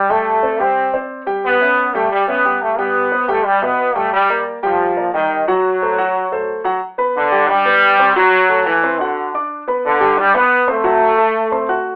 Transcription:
0.09 0.37 G3 medium
0.09 0.60 A3 loud
0.09 0.37 G4 medium
0.09 0.37 G5 medium
0.43 0.57 C4 medium
0.43 0.57 C5 medium
0.43 0.57 D5 medium
0.59 0.87 G3 medium
0.59 0.94 C4 medium
0.59 0.87 G4 medium
0.59 0.88 G5 medium
0.93 1.21 C4 medium
0.93 1.21 C5 medium
0.93 1.21 D5 medium
1.26 1.54 G3 medium
1.26 1.54 G4 medium
1.26 1.55 G5 medium
1.45 1.92 B3 loud
1.61 1.88 C#4 medium
1.61 1.88 C#5 medium
1.61 1.88 E5 medium
1.94 2.22 G3 medium
1.94 2.11 A3 medium
1.94 2.22 G4 medium
1.94 2.22 G5 medium
2.12 2.27 G3 loud
2.28 2.59 B3 loud
2.28 2.42 C#4 medium
2.28 2.42 C#5 medium
2.28 2.42 E5 medium
2.45 2.72 G3 medium
2.45 2.73 G4 medium
2.45 2.73 G5 medium
2.61 2.78 A3 medium
2.78 3.06 G3 medium
2.78 3.29 B3 loud
2.78 3.06 G4 medium
2.78 3.06 G5 medium
3.12 3.26 B3 medium
3.12 3.26 B4 medium
3.12 3.26 C5 medium
3.28 3.56 G3 medium
3.28 3.46 A3 medium
3.28 3.56 G4 medium
3.28 3.56 G5 medium
3.46 3.62 G3 loud
3.62 3.89 B2 medium
3.62 3.96 B3 medium
3.62 3.90 B4 medium
3.62 3.90 E5 medium
3.95 4.23 G3 medium
3.95 4.13 A3 medium
3.95 4.23 G4 medium
3.95 4.23 G5 medium
4.13 4.44 G3 loud
4.30 4.57 A#3 medium
4.30 4.57 A#4 medium
4.30 4.57 D5 medium
4.63 5.10 F3 medium
4.63 4.91 G3 medium
4.63 4.91 G4 medium
4.63 4.91 G5 medium
4.97 5.10 A#3 medium
4.97 5.11 A#4 medium
4.97 5.11 D5 medium
5.14 5.45 D#3 medium
5.14 5.41 G3 medium
5.14 5.42 G4 medium
5.14 5.42 G5 medium
5.48 5.75 F#3 medium
5.48 6.61 F#3 medium
5.48 5.75 F#4 medium
5.48 5.76 F#5 medium
5.82 5.95 A3 medium
5.82 5.95 A4 medium
5.82 5.96 C5 medium
5.98 6.26 F#3 medium
5.98 6.26 F#4 medium
5.98 6.26 F#5 medium
6.32 6.59 A3 medium
6.32 6.59 A4 medium
6.32 6.60 C5 medium
6.64 6.78 F#3 medium
6.64 6.79 F#4 medium
6.64 6.79 F#5 medium
6.98 7.26 B3 medium
6.98 7.26 B4 medium
6.98 7.26 B5 medium
7.16 7.47 D3 loud
7.32 7.46 G3 medium
7.32 7.46 G4 medium
7.32 7.46 G5 medium
7.48 8.16 G3 loud
7.48 7.62 D4 medium
7.48 7.63 D5 medium
7.48 7.63 D6 medium
7.66 7.93 B3 medium
7.66 7.93 B4 medium
7.66 7.93 B5 medium
7.99 8.13 C4 medium
7.99 8.13 C5 medium
7.99 8.13 C6 medium
8.15 8.62 F#3 loud
8.15 8.44 F#3 medium
8.15 8.44 F#4 medium
8.15 8.44 F#5 medium
8.49 8.77 A3 medium
8.49 8.77 A4 medium
8.49 8.77 A5 medium
8.66 8.98 E3 medium
8.83 8.97 C4 medium
8.83 8.97 C5 medium
8.83 8.97 C6 medium
9.00 9.34 D3 medium
9.00 9.28 F#4 medium
9.00 9.28 F#5 medium
9.00 9.28 F#6 medium
9.34 9.62 D4 medium
9.34 9.62 D5 medium
9.34 9.62 D6 medium
9.68 9.95 B3 medium
9.68 9.95 B4 medium
9.68 9.95 B5 medium
9.86 10.16 D3 loud
10.00 10.14 G3 medium
10.00 10.14 G4 medium
10.00 10.15 G5 loud
10.17 10.35 G3 loud
10.17 10.31 D4 medium
10.17 10.31 D5 medium
10.17 10.31 D6 medium
10.34 10.62 B3 medium
10.34 10.69 B3 loud
10.34 10.62 B4 medium
10.34 10.62 B5 medium
10.68 11.96 A3 loud
10.68 10.81 C4 medium
10.68 10.82 C5 medium
10.68 10.82 C6 medium
10.84 11.12 F#3 medium
10.84 11.12 F#4 medium
10.84 11.12 F#5 medium
11.18 11.45 A3 medium
11.18 11.46 A4 medium
11.18 11.46 A5 medium
11.52 11.66 C4 medium
11.52 11.66 C5 medium
11.52 11.66 C6 medium
11.69 11.96 F#4 medium
11.69 11.96 F#5 medium
11.69 11.96 F#6 medium

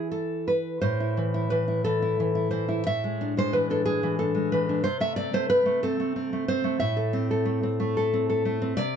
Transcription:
0.00 0.80 E3 soft
0.00 0.80 E4 soft
0.12 0.47 A4 medium
0.48 0.82 B4 medium
0.81 2.83 A2 medium
0.81 1.47 C5 medium
1.00 1.33 E4 soft
1.17 1.50 E3 soft
1.34 1.67 E4 soft
1.50 1.85 E3 soft
1.50 1.83 B4 medium
1.68 2.01 E4 soft
1.84 2.19 E3 soft
1.84 2.50 A4 medium
2.02 2.34 E4 soft
2.20 2.51 E3 soft
2.35 2.67 E4 soft
2.51 2.87 E3 soft
2.51 2.85 C5 medium
2.68 2.86 E4 soft
2.87 4.82 A2 medium
2.87 3.36 E5 medium
3.04 3.36 G#3 soft
3.21 3.69 D4 medium
3.37 3.84 G#3 medium
3.37 3.55 C5 medium
3.53 4.02 E3 soft
3.53 3.70 B4 medium
3.70 4.18 D4 soft
3.70 3.85 A4 medium
3.85 4.33 G#3 soft
3.85 4.18 G#4 medium
4.03 4.52 E3 medium
4.19 4.68 D4 soft
4.19 4.51 A4 medium
4.35 4.85 G#3 soft
4.52 4.84 E3 soft
4.52 4.84 B4 medium
4.69 4.86 D4 medium
4.84 6.78 C3 medium
4.84 5.01 C5 medium
5.00 5.32 A3 medium
5.00 5.16 E5 medium
5.16 5.49 C4 medium
5.16 5.33 D5 loud
5.33 5.64 A3 medium
5.33 5.49 C5 loud
5.50 5.83 C4 soft
5.50 5.82 B4 loud
5.66 5.99 A3 medium
5.83 6.15 C4 medium
5.83 6.47 A4 medium
6.00 6.31 A3 medium
6.16 6.47 C4 soft
6.33 6.63 A3 medium
6.48 6.82 C4 medium
6.48 6.80 C5 medium
6.64 6.80 A3 medium
6.80 8.72 A2 medium
6.80 7.74 E5 medium
6.97 7.30 A4 medium
7.13 7.62 C4 medium
7.31 7.96 A4 medium
7.45 7.63 A3 medium
7.63 8.12 C4 medium
7.80 8.44 A3 medium
7.97 8.28 A4 medium
8.13 8.60 C4 medium
8.30 8.76 A4 medium
8.45 8.77 A3 medium
8.62 8.77 C4 medium
8.77 8.96 C3 medium
8.77 8.96 D5 loud

